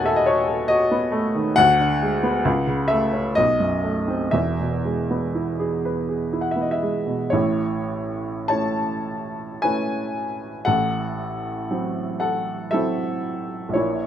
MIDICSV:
0, 0, Header, 1, 2, 480
1, 0, Start_track
1, 0, Tempo, 867052
1, 879, Time_signature, 3, 2, 24, 8
1, 1361, Tempo, 910470
1, 1841, Tempo, 969305
1, 2321, Tempo, 1001669
1, 3761, Tempo, 1183432
1, 4241, Tempo, 1127820
1, 4721, Tempo, 1025641
1, 6786, End_track
2, 0, Start_track
2, 0, Title_t, "Upright piano"
2, 0, Program_c, 0, 0
2, 0, Control_c, 0, 64, 127
2, 0, Note_on_c, 0, 27, 62
2, 0, Note_on_c, 0, 39, 72
2, 0, Note_on_c, 0, 51, 51
2, 0, Note_on_c, 0, 57, 53
2, 0, Note_on_c, 0, 59, 50
2, 0, Note_on_c, 0, 66, 53
2, 0, Note_on_c, 0, 71, 94
2, 0, Note_on_c, 0, 73, 71
2, 0, Note_on_c, 0, 75, 73
2, 0, Note_on_c, 0, 76, 66
2, 0, Note_on_c, 0, 78, 72
2, 0, Note_on_c, 0, 80, 73
2, 0, Note_on_c, 0, 81, 74
2, 26, Note_on_c, 0, 69, 66
2, 31, Note_off_c, 0, 76, 0
2, 31, Note_on_c, 0, 76, 85
2, 90, Note_off_c, 0, 75, 0
2, 90, Note_on_c, 0, 75, 88
2, 94, Note_off_c, 0, 76, 0
2, 110, Note_off_c, 0, 66, 0
2, 145, Note_off_c, 0, 73, 0
2, 145, Note_on_c, 0, 73, 85
2, 153, Note_off_c, 0, 75, 0
2, 154, Note_on_c, 0, 66, 59
2, 224, Note_off_c, 0, 69, 0
2, 269, Note_on_c, 0, 69, 53
2, 347, Note_off_c, 0, 66, 0
2, 377, Note_on_c, 0, 75, 103
2, 388, Note_on_c, 0, 66, 65
2, 390, Note_off_c, 0, 73, 0
2, 464, Note_off_c, 0, 69, 0
2, 506, Note_off_c, 0, 59, 0
2, 506, Note_on_c, 0, 59, 63
2, 584, Note_off_c, 0, 66, 0
2, 619, Note_off_c, 0, 57, 0
2, 619, Note_on_c, 0, 57, 72
2, 704, Note_off_c, 0, 59, 0
2, 749, Note_off_c, 0, 51, 0
2, 749, Note_on_c, 0, 51, 61
2, 821, Note_off_c, 0, 57, 0
2, 852, Note_off_c, 0, 27, 0
2, 855, Note_off_c, 0, 39, 0
2, 862, Note_off_c, 0, 78, 0
2, 862, Note_on_c, 0, 78, 127
2, 868, Note_off_c, 0, 75, 0
2, 873, Note_on_c, 0, 38, 89
2, 874, Note_off_c, 0, 51, 0
2, 888, Control_c, 0, 64, 0
2, 889, Note_off_c, 0, 80, 0
2, 890, Note_off_c, 0, 81, 0
2, 893, Note_off_c, 0, 71, 0
2, 971, Control_c, 0, 64, 127
2, 996, Note_on_c, 0, 50, 58
2, 1122, Note_on_c, 0, 56, 62
2, 1189, Note_off_c, 0, 50, 0
2, 1236, Note_on_c, 0, 59, 63
2, 1314, Note_off_c, 0, 56, 0
2, 1343, Note_off_c, 0, 38, 0
2, 1357, Note_on_c, 0, 37, 83
2, 1359, Note_off_c, 0, 59, 0
2, 1369, Control_c, 0, 64, 0
2, 1450, Control_c, 0, 64, 127
2, 1473, Note_on_c, 0, 49, 61
2, 1582, Note_on_c, 0, 76, 91
2, 1590, Note_off_c, 0, 78, 0
2, 1596, Note_on_c, 0, 57, 66
2, 1667, Note_off_c, 0, 49, 0
2, 1713, Note_on_c, 0, 61, 55
2, 1791, Note_off_c, 0, 57, 0
2, 1824, Note_off_c, 0, 37, 0
2, 1833, Note_off_c, 0, 76, 0
2, 1833, Note_on_c, 0, 75, 102
2, 1838, Note_off_c, 0, 61, 0
2, 1843, Note_on_c, 0, 35, 70
2, 1850, Control_c, 0, 64, 0
2, 1939, Control_c, 0, 64, 127
2, 1954, Note_on_c, 0, 42, 55
2, 2073, Note_on_c, 0, 57, 56
2, 2146, Note_off_c, 0, 42, 0
2, 2193, Note_on_c, 0, 60, 53
2, 2269, Note_off_c, 0, 57, 0
2, 2307, Note_off_c, 0, 35, 0
2, 2308, Note_on_c, 0, 76, 81
2, 2314, Note_on_c, 0, 28, 56
2, 2316, Note_off_c, 0, 75, 0
2, 2317, Note_on_c, 0, 40, 66
2, 2319, Note_off_c, 0, 60, 0
2, 2329, Control_c, 0, 64, 0
2, 2414, Control_c, 0, 64, 127
2, 2447, Note_on_c, 0, 47, 44
2, 2568, Note_on_c, 0, 56, 43
2, 2640, Note_off_c, 0, 47, 0
2, 2689, Note_on_c, 0, 59, 52
2, 2760, Note_off_c, 0, 56, 0
2, 2805, Note_on_c, 0, 64, 54
2, 2880, Note_off_c, 0, 59, 0
2, 2923, Note_on_c, 0, 68, 54
2, 2997, Note_off_c, 0, 64, 0
2, 3047, Note_on_c, 0, 71, 51
2, 3115, Note_off_c, 0, 68, 0
2, 3159, Note_on_c, 0, 68, 44
2, 3235, Note_off_c, 0, 71, 0
2, 3275, Note_on_c, 0, 64, 55
2, 3315, Note_on_c, 0, 78, 64
2, 3322, Note_off_c, 0, 76, 0
2, 3349, Note_off_c, 0, 68, 0
2, 3363, Note_on_c, 0, 76, 66
2, 3368, Note_off_c, 0, 78, 0
2, 3386, Note_on_c, 0, 59, 44
2, 3412, Note_on_c, 0, 75, 63
2, 3416, Note_off_c, 0, 76, 0
2, 3458, Note_on_c, 0, 76, 67
2, 3464, Note_off_c, 0, 75, 0
2, 3466, Note_off_c, 0, 64, 0
2, 3511, Note_off_c, 0, 76, 0
2, 3513, Note_on_c, 0, 56, 54
2, 3582, Note_off_c, 0, 59, 0
2, 3627, Note_on_c, 0, 47, 44
2, 3709, Note_off_c, 0, 56, 0
2, 3738, Note_off_c, 0, 28, 0
2, 3740, Note_off_c, 0, 40, 0
2, 3740, Note_on_c, 0, 73, 77
2, 3751, Note_on_c, 0, 64, 61
2, 3752, Note_on_c, 0, 33, 61
2, 3753, Note_on_c, 0, 45, 57
2, 3756, Note_off_c, 0, 47, 0
2, 3770, Control_c, 0, 64, 0
2, 3857, Control_c, 0, 64, 127
2, 4220, Note_off_c, 0, 64, 0
2, 4223, Note_off_c, 0, 73, 0
2, 4223, Note_on_c, 0, 81, 85
2, 4229, Note_on_c, 0, 73, 64
2, 4233, Note_on_c, 0, 57, 42
2, 4234, Note_on_c, 0, 61, 42
2, 4236, Note_on_c, 0, 64, 45
2, 4697, Note_off_c, 0, 73, 0
2, 4699, Note_off_c, 0, 57, 0
2, 4700, Note_off_c, 0, 61, 0
2, 4701, Note_off_c, 0, 64, 0
2, 4706, Note_on_c, 0, 80, 89
2, 4711, Note_off_c, 0, 81, 0
2, 4714, Note_on_c, 0, 71, 56
2, 4716, Note_on_c, 0, 61, 47
2, 4717, Note_on_c, 0, 57, 40
2, 4719, Note_on_c, 0, 64, 51
2, 5175, Note_off_c, 0, 33, 0
2, 5175, Note_off_c, 0, 45, 0
2, 5176, Note_off_c, 0, 71, 0
2, 5177, Note_off_c, 0, 61, 0
2, 5178, Note_off_c, 0, 57, 0
2, 5179, Note_off_c, 0, 64, 0
2, 5186, Note_on_c, 0, 78, 92
2, 5190, Note_off_c, 0, 80, 0
2, 5190, Note_on_c, 0, 69, 66
2, 5194, Note_on_c, 0, 45, 55
2, 5197, Note_on_c, 0, 33, 59
2, 5205, Control_c, 0, 64, 0
2, 5283, Control_c, 0, 64, 127
2, 5682, Note_on_c, 0, 54, 42
2, 5682, Note_on_c, 0, 60, 43
2, 5684, Note_on_c, 0, 64, 45
2, 5897, Note_off_c, 0, 69, 0
2, 5904, Note_off_c, 0, 78, 0
2, 5911, Note_on_c, 0, 78, 77
2, 5914, Note_on_c, 0, 69, 64
2, 6139, Note_off_c, 0, 69, 0
2, 6142, Note_off_c, 0, 54, 0
2, 6142, Note_off_c, 0, 60, 0
2, 6143, Note_off_c, 0, 64, 0
2, 6150, Note_on_c, 0, 76, 87
2, 6155, Note_off_c, 0, 78, 0
2, 6156, Note_on_c, 0, 69, 67
2, 6160, Note_on_c, 0, 54, 47
2, 6163, Note_on_c, 0, 64, 55
2, 6164, Note_on_c, 0, 60, 48
2, 6610, Note_on_c, 0, 34, 58
2, 6613, Note_off_c, 0, 45, 0
2, 6614, Note_off_c, 0, 33, 0
2, 6614, Note_off_c, 0, 69, 0
2, 6616, Note_off_c, 0, 54, 0
2, 6617, Note_off_c, 0, 60, 0
2, 6617, Note_off_c, 0, 64, 0
2, 6629, Note_off_c, 0, 76, 0
2, 6631, Note_on_c, 0, 73, 78
2, 6638, Note_on_c, 0, 46, 57
2, 6638, Note_on_c, 0, 64, 65
2, 6642, Control_c, 0, 64, 0
2, 6737, Control_c, 0, 64, 127
2, 6786, Note_off_c, 0, 34, 0
2, 6786, Note_off_c, 0, 46, 0
2, 6786, Note_off_c, 0, 64, 0
2, 6786, Note_off_c, 0, 73, 0
2, 6786, End_track
0, 0, End_of_file